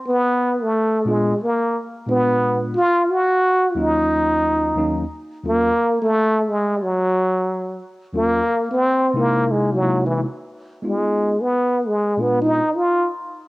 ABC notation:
X:1
M:4/4
L:1/16
Q:"Swing 16ths" 1/4=89
K:Bbm
V:1 name="Tine electric piano"
z6 [B,,A,_C=DF]2 z4 [B,,A,CDF]4 | z6 [E,,G,B,DF]6 [E,,G,B,DE]2 z2 | [E,,G,B,DF]2 z12 z2 | [E,,G,B,DF]2 z4 [C,A,B,E_F]4 [C,^G,B,^D=E]2 z4 |
[A,_CEF]2 z6 [B,,A,C=DF]2 z6 |]
V:2 name="Trombone"
_C3 =A,3 _A,2 B,2 z2 C3 z | F2 G4 E8 z2 | B,3 =A,3 _A,2 G,6 z2 | B,3 C3 B,2 ^G, _G,2 =E,2 z3 |
A,3 _C3 A,2 C E2 F2 z3 |]